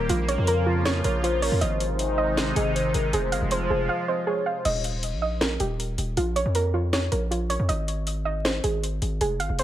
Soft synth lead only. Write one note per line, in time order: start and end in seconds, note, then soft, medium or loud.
0.09 1.00 A#4 loud
1.05 1.23 C#5 medium
1.24 1.42 C5 medium
1.42 1.60 A#4 medium
1.61 2.52 C5 loud
2.56 2.74 D#5 medium
2.75 2.93 C5 medium
2.94 3.12 A#4 medium
3.13 4.04 C5 loud
4.08 4.26 D#5 medium
4.27 4.45 C#5 medium
4.46 4.64 C5 medium